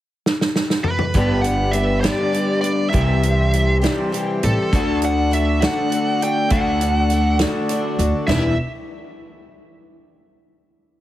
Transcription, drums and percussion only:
0, 0, Header, 1, 2, 480
1, 0, Start_track
1, 0, Key_signature, 1, "minor"
1, 0, Tempo, 595238
1, 922, Time_signature, 6, 3, 24, 8
1, 8875, End_track
2, 0, Start_track
2, 0, Title_t, "Drums"
2, 211, Note_on_c, 9, 38, 60
2, 292, Note_off_c, 9, 38, 0
2, 333, Note_on_c, 9, 38, 72
2, 414, Note_off_c, 9, 38, 0
2, 448, Note_on_c, 9, 38, 82
2, 529, Note_off_c, 9, 38, 0
2, 566, Note_on_c, 9, 38, 80
2, 647, Note_off_c, 9, 38, 0
2, 677, Note_on_c, 9, 45, 78
2, 758, Note_off_c, 9, 45, 0
2, 796, Note_on_c, 9, 45, 89
2, 877, Note_off_c, 9, 45, 0
2, 918, Note_on_c, 9, 42, 77
2, 924, Note_on_c, 9, 36, 108
2, 998, Note_off_c, 9, 42, 0
2, 1004, Note_off_c, 9, 36, 0
2, 1163, Note_on_c, 9, 42, 60
2, 1244, Note_off_c, 9, 42, 0
2, 1396, Note_on_c, 9, 42, 56
2, 1477, Note_off_c, 9, 42, 0
2, 1643, Note_on_c, 9, 42, 78
2, 1648, Note_on_c, 9, 38, 99
2, 1724, Note_off_c, 9, 42, 0
2, 1729, Note_off_c, 9, 38, 0
2, 1890, Note_on_c, 9, 42, 64
2, 1971, Note_off_c, 9, 42, 0
2, 2127, Note_on_c, 9, 42, 57
2, 2208, Note_off_c, 9, 42, 0
2, 2370, Note_on_c, 9, 36, 98
2, 2370, Note_on_c, 9, 42, 78
2, 2450, Note_off_c, 9, 42, 0
2, 2451, Note_off_c, 9, 36, 0
2, 2607, Note_on_c, 9, 42, 64
2, 2687, Note_off_c, 9, 42, 0
2, 2851, Note_on_c, 9, 42, 58
2, 2931, Note_off_c, 9, 42, 0
2, 3094, Note_on_c, 9, 42, 80
2, 3099, Note_on_c, 9, 38, 96
2, 3174, Note_off_c, 9, 42, 0
2, 3179, Note_off_c, 9, 38, 0
2, 3338, Note_on_c, 9, 42, 59
2, 3419, Note_off_c, 9, 42, 0
2, 3572, Note_on_c, 9, 42, 54
2, 3653, Note_off_c, 9, 42, 0
2, 3812, Note_on_c, 9, 36, 110
2, 3815, Note_on_c, 9, 42, 74
2, 3893, Note_off_c, 9, 36, 0
2, 3895, Note_off_c, 9, 42, 0
2, 4045, Note_on_c, 9, 42, 55
2, 4126, Note_off_c, 9, 42, 0
2, 4298, Note_on_c, 9, 42, 52
2, 4379, Note_off_c, 9, 42, 0
2, 4533, Note_on_c, 9, 42, 76
2, 4538, Note_on_c, 9, 38, 97
2, 4613, Note_off_c, 9, 42, 0
2, 4618, Note_off_c, 9, 38, 0
2, 4773, Note_on_c, 9, 42, 59
2, 4854, Note_off_c, 9, 42, 0
2, 5018, Note_on_c, 9, 42, 55
2, 5098, Note_off_c, 9, 42, 0
2, 5244, Note_on_c, 9, 42, 79
2, 5250, Note_on_c, 9, 36, 112
2, 5325, Note_off_c, 9, 42, 0
2, 5331, Note_off_c, 9, 36, 0
2, 5491, Note_on_c, 9, 42, 60
2, 5572, Note_off_c, 9, 42, 0
2, 5724, Note_on_c, 9, 42, 57
2, 5804, Note_off_c, 9, 42, 0
2, 5960, Note_on_c, 9, 42, 85
2, 5964, Note_on_c, 9, 38, 108
2, 6040, Note_off_c, 9, 42, 0
2, 6045, Note_off_c, 9, 38, 0
2, 6202, Note_on_c, 9, 42, 68
2, 6283, Note_off_c, 9, 42, 0
2, 6445, Note_on_c, 9, 42, 63
2, 6526, Note_off_c, 9, 42, 0
2, 6686, Note_on_c, 9, 43, 94
2, 6686, Note_on_c, 9, 49, 78
2, 6691, Note_on_c, 9, 38, 95
2, 6767, Note_off_c, 9, 43, 0
2, 6767, Note_off_c, 9, 49, 0
2, 6771, Note_off_c, 9, 38, 0
2, 8875, End_track
0, 0, End_of_file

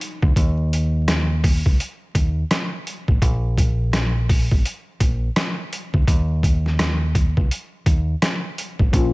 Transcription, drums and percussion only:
0, 0, Header, 1, 2, 480
1, 0, Start_track
1, 0, Key_signature, -5, "minor"
1, 0, Tempo, 714286
1, 243, Time_signature, 4, 2, 24, 8
1, 6136, End_track
2, 0, Start_track
2, 0, Title_t, "Drums"
2, 9, Note_on_c, 9, 42, 76
2, 76, Note_off_c, 9, 42, 0
2, 151, Note_on_c, 9, 36, 91
2, 218, Note_off_c, 9, 36, 0
2, 243, Note_on_c, 9, 36, 109
2, 247, Note_on_c, 9, 42, 96
2, 310, Note_off_c, 9, 36, 0
2, 314, Note_off_c, 9, 42, 0
2, 491, Note_on_c, 9, 42, 73
2, 558, Note_off_c, 9, 42, 0
2, 725, Note_on_c, 9, 37, 95
2, 726, Note_on_c, 9, 38, 123
2, 728, Note_on_c, 9, 42, 92
2, 792, Note_off_c, 9, 37, 0
2, 793, Note_off_c, 9, 38, 0
2, 795, Note_off_c, 9, 42, 0
2, 966, Note_on_c, 9, 36, 94
2, 968, Note_on_c, 9, 46, 52
2, 1034, Note_off_c, 9, 36, 0
2, 1035, Note_off_c, 9, 46, 0
2, 1115, Note_on_c, 9, 36, 84
2, 1182, Note_off_c, 9, 36, 0
2, 1211, Note_on_c, 9, 42, 86
2, 1278, Note_off_c, 9, 42, 0
2, 1444, Note_on_c, 9, 36, 93
2, 1446, Note_on_c, 9, 42, 77
2, 1511, Note_off_c, 9, 36, 0
2, 1513, Note_off_c, 9, 42, 0
2, 1685, Note_on_c, 9, 37, 86
2, 1686, Note_on_c, 9, 38, 103
2, 1686, Note_on_c, 9, 42, 81
2, 1752, Note_off_c, 9, 37, 0
2, 1753, Note_off_c, 9, 38, 0
2, 1753, Note_off_c, 9, 42, 0
2, 1928, Note_on_c, 9, 42, 76
2, 1995, Note_off_c, 9, 42, 0
2, 2071, Note_on_c, 9, 36, 90
2, 2138, Note_off_c, 9, 36, 0
2, 2163, Note_on_c, 9, 36, 112
2, 2165, Note_on_c, 9, 42, 100
2, 2230, Note_off_c, 9, 36, 0
2, 2232, Note_off_c, 9, 42, 0
2, 2403, Note_on_c, 9, 36, 99
2, 2408, Note_on_c, 9, 42, 71
2, 2470, Note_off_c, 9, 36, 0
2, 2475, Note_off_c, 9, 42, 0
2, 2642, Note_on_c, 9, 37, 99
2, 2643, Note_on_c, 9, 38, 127
2, 2645, Note_on_c, 9, 42, 93
2, 2709, Note_off_c, 9, 37, 0
2, 2710, Note_off_c, 9, 38, 0
2, 2712, Note_off_c, 9, 42, 0
2, 2885, Note_on_c, 9, 36, 94
2, 2886, Note_on_c, 9, 46, 52
2, 2953, Note_off_c, 9, 36, 0
2, 2953, Note_off_c, 9, 46, 0
2, 3034, Note_on_c, 9, 36, 85
2, 3101, Note_off_c, 9, 36, 0
2, 3128, Note_on_c, 9, 42, 89
2, 3195, Note_off_c, 9, 42, 0
2, 3363, Note_on_c, 9, 36, 92
2, 3364, Note_on_c, 9, 42, 78
2, 3430, Note_off_c, 9, 36, 0
2, 3431, Note_off_c, 9, 42, 0
2, 3603, Note_on_c, 9, 37, 85
2, 3604, Note_on_c, 9, 42, 83
2, 3605, Note_on_c, 9, 38, 110
2, 3671, Note_off_c, 9, 37, 0
2, 3671, Note_off_c, 9, 42, 0
2, 3672, Note_off_c, 9, 38, 0
2, 3848, Note_on_c, 9, 42, 76
2, 3915, Note_off_c, 9, 42, 0
2, 3990, Note_on_c, 9, 36, 89
2, 4057, Note_off_c, 9, 36, 0
2, 4082, Note_on_c, 9, 36, 113
2, 4085, Note_on_c, 9, 42, 100
2, 4149, Note_off_c, 9, 36, 0
2, 4152, Note_off_c, 9, 42, 0
2, 4322, Note_on_c, 9, 36, 103
2, 4329, Note_on_c, 9, 42, 72
2, 4390, Note_off_c, 9, 36, 0
2, 4396, Note_off_c, 9, 42, 0
2, 4476, Note_on_c, 9, 38, 36
2, 4543, Note_off_c, 9, 38, 0
2, 4564, Note_on_c, 9, 37, 99
2, 4565, Note_on_c, 9, 38, 121
2, 4567, Note_on_c, 9, 42, 91
2, 4631, Note_off_c, 9, 37, 0
2, 4632, Note_off_c, 9, 38, 0
2, 4634, Note_off_c, 9, 42, 0
2, 4805, Note_on_c, 9, 36, 95
2, 4806, Note_on_c, 9, 42, 73
2, 4872, Note_off_c, 9, 36, 0
2, 4874, Note_off_c, 9, 42, 0
2, 4953, Note_on_c, 9, 36, 86
2, 5020, Note_off_c, 9, 36, 0
2, 5049, Note_on_c, 9, 42, 90
2, 5116, Note_off_c, 9, 42, 0
2, 5282, Note_on_c, 9, 36, 91
2, 5284, Note_on_c, 9, 42, 74
2, 5349, Note_off_c, 9, 36, 0
2, 5351, Note_off_c, 9, 42, 0
2, 5524, Note_on_c, 9, 37, 86
2, 5525, Note_on_c, 9, 42, 80
2, 5526, Note_on_c, 9, 38, 110
2, 5592, Note_off_c, 9, 37, 0
2, 5592, Note_off_c, 9, 42, 0
2, 5593, Note_off_c, 9, 38, 0
2, 5768, Note_on_c, 9, 42, 78
2, 5835, Note_off_c, 9, 42, 0
2, 5910, Note_on_c, 9, 36, 88
2, 5977, Note_off_c, 9, 36, 0
2, 6002, Note_on_c, 9, 36, 115
2, 6005, Note_on_c, 9, 42, 97
2, 6069, Note_off_c, 9, 36, 0
2, 6072, Note_off_c, 9, 42, 0
2, 6136, End_track
0, 0, End_of_file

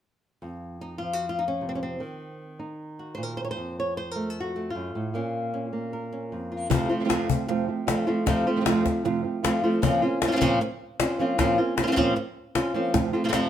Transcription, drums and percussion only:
0, 0, Header, 1, 2, 480
1, 0, Start_track
1, 0, Tempo, 390879
1, 526, Time_signature, 4, 2, 24, 8
1, 16571, End_track
2, 0, Start_track
2, 0, Title_t, "Cajon"
2, 8240, Note_on_c, 9, 36, 86
2, 8363, Note_off_c, 9, 36, 0
2, 8717, Note_on_c, 9, 38, 83
2, 8840, Note_off_c, 9, 38, 0
2, 8959, Note_on_c, 9, 36, 70
2, 9082, Note_off_c, 9, 36, 0
2, 9677, Note_on_c, 9, 38, 88
2, 9800, Note_off_c, 9, 38, 0
2, 9914, Note_on_c, 9, 38, 28
2, 10037, Note_off_c, 9, 38, 0
2, 10154, Note_on_c, 9, 36, 86
2, 10154, Note_on_c, 9, 38, 27
2, 10277, Note_off_c, 9, 36, 0
2, 10277, Note_off_c, 9, 38, 0
2, 10634, Note_on_c, 9, 38, 92
2, 10757, Note_off_c, 9, 38, 0
2, 10874, Note_on_c, 9, 36, 68
2, 10874, Note_on_c, 9, 38, 26
2, 10997, Note_off_c, 9, 36, 0
2, 10997, Note_off_c, 9, 38, 0
2, 11598, Note_on_c, 9, 38, 92
2, 11721, Note_off_c, 9, 38, 0
2, 12072, Note_on_c, 9, 36, 85
2, 12194, Note_off_c, 9, 36, 0
2, 12547, Note_on_c, 9, 38, 91
2, 12670, Note_off_c, 9, 38, 0
2, 12790, Note_on_c, 9, 36, 68
2, 12912, Note_off_c, 9, 36, 0
2, 13503, Note_on_c, 9, 38, 85
2, 13626, Note_off_c, 9, 38, 0
2, 13985, Note_on_c, 9, 36, 88
2, 13985, Note_on_c, 9, 38, 26
2, 14108, Note_off_c, 9, 36, 0
2, 14108, Note_off_c, 9, 38, 0
2, 14462, Note_on_c, 9, 38, 90
2, 14584, Note_off_c, 9, 38, 0
2, 14699, Note_on_c, 9, 36, 63
2, 14699, Note_on_c, 9, 38, 26
2, 14822, Note_off_c, 9, 36, 0
2, 14822, Note_off_c, 9, 38, 0
2, 15415, Note_on_c, 9, 38, 83
2, 15537, Note_off_c, 9, 38, 0
2, 15656, Note_on_c, 9, 38, 27
2, 15779, Note_off_c, 9, 38, 0
2, 15892, Note_on_c, 9, 36, 81
2, 15892, Note_on_c, 9, 38, 26
2, 16015, Note_off_c, 9, 36, 0
2, 16015, Note_off_c, 9, 38, 0
2, 16366, Note_on_c, 9, 38, 86
2, 16489, Note_off_c, 9, 38, 0
2, 16571, End_track
0, 0, End_of_file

